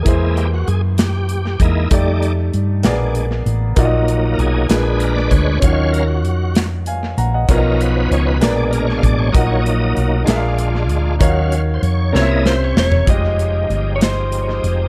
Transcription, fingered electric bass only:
X:1
M:6/8
L:1/8
Q:3/8=65
K:Ebm
V:1 name="Fingered electric bass" clef=bass
=E,,2 G,,3 E,, | F,,2 =G,, B,,,2 =A,,, | B,,,2 C,, B,,,2 =D,, | E,,2 F,,3 B,,, |
=B,,,2 ^C,, _B,,,2 =A,,, | B,,,2 C,, B,,,2 =D,, | E,,2 F,, =C,,2 =E,,, | [K:Fm] F,,,2 G,,,3 F,,, |]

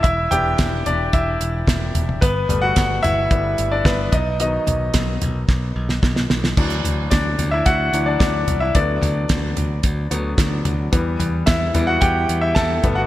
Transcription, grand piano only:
X:1
M:4/4
L:1/16
Q:1/4=110
K:Em
V:1 name="Grand piano"
[Ee]2 [Gg]4 [Dd]2 [Ee]4 z4 | [B,B]3 [Ff]3 [Ee]4- [Ee] [Dd] [B,B]2 [^D^d]2 | [^D^d]12- [Dd]2 z2 | z4 [Dd]3 [Ee] [Ff]3 [Dd] [Dd]3 [Ee] |
[Dd]8 z8 | z4 [Ee]3 [Ff] [Gg]3 [Ee] [Aa]3 [Ff] |]
V:2 name="Grand piano" clef=bass
z2 [E,B,D]12- [E,B,D]2 | z2 [G,A,B,]6 [G,A,B,]2 z6 | [^D,F,B,]16 | [E,F,D]6 z4 [E,F,D]2 z4 |
[D,F,B,]8- [D,F,B,]2 [D,F,B,]2 z4 | [E,G,B,]6 [E,G,B,]2 z6 [G,A,B,]2 |]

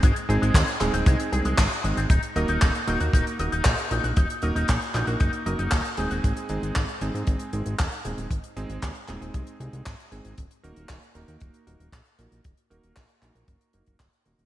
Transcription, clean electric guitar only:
X:1
M:4/4
L:1/16
Q:1/4=116
K:Ebdor
V:1 name="Clean electric guitar"
A, z A A, A, z A, C A, z A A, A, z A, C | E z e E E z E G E z e E E z E G | E z e E E z E G E z e E E z E G | z16 |
z16 | z16 | z16 |]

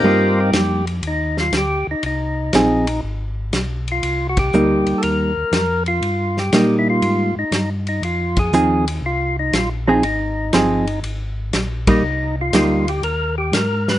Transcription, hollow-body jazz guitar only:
X:1
M:4/4
L:1/8
Q:"Swing" 1/4=120
K:Cm
V:1 name="Hollow-body jazz guitar"
[G,B,E]3 z4 z | z2 [F,CEA] z4 z | z2 [G,B,E]3 z3 | z2 [G,B,E]3 z3 |
z2 [F,CEA] z4 [F,CEA] | z2 [F,CEA] z4 [G,B,E] | z2 [G,B,E] z4 z |]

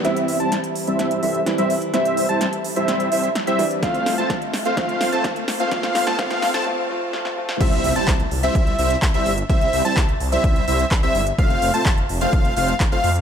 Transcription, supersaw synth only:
X:1
M:4/4
L:1/16
Q:1/4=127
K:C
V:1 name="Supersaw synth"
[G,CEce]3 [G,CEca] z3 [G,CEce]3 [G,CEce] z2 [G,CEce] z2 | [G,CEce]3 [G,CEca] z3 [G,CEce]3 [G,CEce] z2 [G,CEce] z2 | [A,CFcf]3 [A,CFca] z3 [A,CFcf] [A,CFf]3 [A,CFca] z3 [A,CFcf] | A,3 [A,CFca] [A,CFcf]3 [A,CFca] z8 |
[G,CEce]3 [G,CEca] z3 [G,CEce]3 [G,CEce] z2 [G,CEce] z2 | [G,CEce]3 [G,CEca] z3 [G,CEce]3 [G,CEce] z2 [G,CEce] z2 | [A,CFcf]3 [A,CFca] z3 [A,CFcf]3 [A,CFcf] z2 [A,CFcf] z2 |]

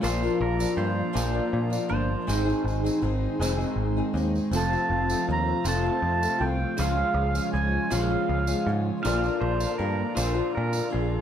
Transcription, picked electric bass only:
X:1
M:6/8
L:1/8
Q:3/8=53
K:Bb
V:1 name="Picked electric bass" clef=bass
B,,, B,,, G,, B,,, B,, G,,, | _A,,, A,,, A,,, F,,, A,,, E,, | F,,, F,,, E,, F,,, F,, C,, | _D,, D,, D,, B,,, D,, _A,, |
B,,, B,,, G,, B,,, B,, B,,, |]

